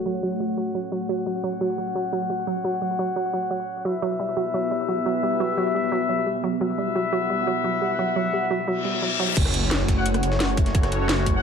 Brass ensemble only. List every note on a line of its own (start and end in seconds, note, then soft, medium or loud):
0.00 1.07 F#4 medium
0.00 1.07 C#5 medium
0.00 1.07 F#5 loud
1.09 3.83 F#4 medium
1.09 3.83 C#5 medium
1.09 3.83 F#5 loud
3.85 6.44 E4 medium
3.85 6.44 B4 medium
3.85 6.44 E5 loud
6.61 9.35 E4 medium
6.61 9.35 B4 medium
6.61 9.35 E5 loud
9.97 10.06 F#4 medium
9.97 10.06 C#5 medium
9.97 10.06 F#5 loud
11.35 11.42 F#4 medium
11.35 11.42 C#5 medium
11.35 11.42 F#5 loud